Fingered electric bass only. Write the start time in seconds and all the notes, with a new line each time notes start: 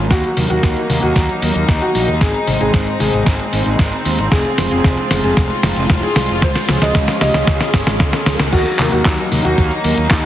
0.11 D#2
0.37 D#2
0.50 D#2
0.63 D#2
0.90 D#2
1.03 D#2
1.16 D#2
1.42 D#2
1.55 D#2
1.69 D#2
1.95 A#1
2.08 D#2
2.21 G#1
2.47 G#1
2.61 G#1
2.74 G#1
3.00 G#1
3.13 G#1
3.26 G#1
3.53 G#1
3.66 G#1
3.79 G#1
4.06 D#2
4.19 G#1
4.32 F1
4.58 F1
4.71 F1
4.84 F1
5.11 F1
5.24 F1
5.37 F1
5.63 F1
5.77 F1
5.90 F1
6.16 C2
6.29 F1
6.42 C#2
6.69 C#2
6.82 C#2
6.95 C#2
7.21 C#2
7.34 C#2
7.47 C#2
7.74 G#1
7.87 G#1
8.00 C#2
8.26 C#2
8.40 C#2
8.53 D#2
8.79 D#2
8.92 D#2
9.05 D#2
9.32 D#2
9.45 D#2
9.58 D#2
9.84 D#2
9.98 D#2
10.11 D#2